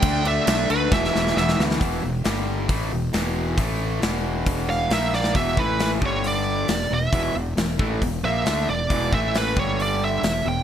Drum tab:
CC |x-x-x-x---------|----------------|----------------|----------------|
HH |----------------|o---o---o---o---|o---o---o---o---|o---o---o---o---|
SD |----o---oooooooo|----o-------o---|----o-----o-o-oo|----o-------o---|
BD |o-------o-------|o-------o-------|o-------o-------|o-o---o---------|

CC |----------------|----------------|
HH |o---o---o---o---|o---o---o---o---|
SD |----o-------o---|----o-------o---|
BD |o-----o-o-------|o-o---o---------|